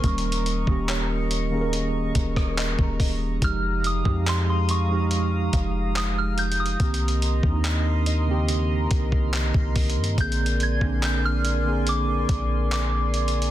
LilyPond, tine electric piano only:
\new Staff \with { instrumentName = "Tine electric piano" } { \time 4/4 \key f \minor \tempo 4 = 71 <ees g bes des'>8. <ees bes des' g'>4 <ees bes des' aes' bes'>4.~ <ees bes des' aes' bes'>16 r8 | <f aes ees' g'>8. <f aes ees' g'>4 <f aes ees' g'>4.~ <f aes ees' g'>16 r8 | <ees bes c' g'>8. <ees bes c' d' ees'>4 <des ees bes c' g'>4.~ <des ees bes c' g'>16 r8 | <d bes c' aes'>8. <d bes c' d'>4 <d bes c' aes'>4.~ <d bes c' aes'>16 r8 | }